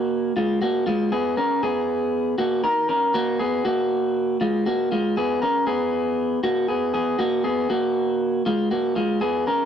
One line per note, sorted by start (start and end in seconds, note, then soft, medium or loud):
0.00 0.32 A#3 medium
0.00 0.32 F#4 medium
0.37 0.62 G#3 medium
0.37 0.61 F4 medium
0.62 0.87 A#3 medium
0.62 0.86 F#4 medium
0.86 1.12 G#3 medium
0.86 1.11 F4 medium
1.12 1.37 B3 medium
1.12 1.37 G#4 medium
1.37 1.62 C#4 medium
1.37 1.62 A#4 medium
1.63 2.35 B3 medium
1.63 2.34 G#4 loud
2.38 2.64 A#3 medium
2.38 2.63 F#4 medium
2.64 2.89 D#4 medium
2.64 2.88 A#4 medium
2.89 3.14 C#4 medium
2.89 3.14 A#4 medium
3.14 3.40 A#3 medium
3.14 3.39 F#4 loud
3.39 3.65 B3 medium
3.39 3.64 G#4 medium
3.65 4.37 A#3 medium
3.65 4.36 F#4 medium
4.41 4.66 G#3 medium
4.41 4.66 F4 medium
4.66 4.91 A#3 medium
4.66 4.91 F#4 medium
4.92 5.17 G#3 medium
4.92 5.16 F4 medium
5.17 5.42 B3 medium
5.17 5.41 G#4 loud
5.42 5.67 C#4 medium
5.42 5.66 A#4 medium
5.67 6.39 B3 medium
5.67 6.39 G#4 medium
6.43 6.69 A#3 medium
6.43 6.68 F#4 medium
6.68 6.93 B3 medium
6.68 6.93 G#4 medium
6.94 7.18 B3 medium
6.94 7.19 G#4 medium
7.19 7.44 A#3 medium
7.19 7.44 F#4 loud
7.44 7.69 B3 medium
7.44 7.69 G#4 medium
7.70 8.42 A#3 medium
7.70 8.42 F#4 medium
8.46 8.71 G#3 medium
8.46 8.71 F4 medium
8.71 8.97 A#3 medium
8.71 8.96 F#4 medium
8.96 9.22 G#3 medium
8.96 9.21 F4 medium
9.21 9.47 B3 medium
9.21 9.47 G#4 loud
9.47 9.65 C#4 medium
9.47 9.65 A#4 medium